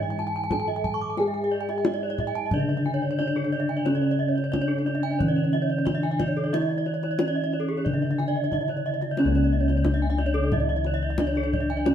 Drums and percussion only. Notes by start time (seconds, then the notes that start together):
0.19 kendang slap
0.51 kendang slap, kendang high, kendang low
0.67 kendang slap
0.84 kendang low
1.17 kendang high
1.69 kendang slap
1.85 kendang slap, kendang high
2.18 kendang slap, kendang low
2.51 kendang low
2.85 kendang slap
3.19 kendang slap
3.36 kendang slap
3.86 kendang high
4.04 kendang slap
4.38 kendang slap
4.53 kendang slap, kendang high, kendang low
4.87 kendang slap
5.20 kendang low
5.54 kendang slap
5.87 kendang slap, kendang high, kendang low
6.03 kendang slap
6.20 kendang high, kendang low
6.54 kendang high
6.86 kendang slap
7.03 kendang slap
7.19 kendang slap, kendang high
7.53 kendang slap
7.86 kendang low
8.20 kendang slap
8.52 kendang low
8.68 kendang slap
9.02 kendang slap
9.17 kendang high
9.35 kendang slap
9.69 kendang slap
9.85 kendang slap, kendang high, kendang low
10.18 kendang slap
10.52 kendang low
10.84 kendang slap
11.18 kendang slap, kendang high, kendang low
11.35 kendang slap
11.53 kendang low
11.86 kendang high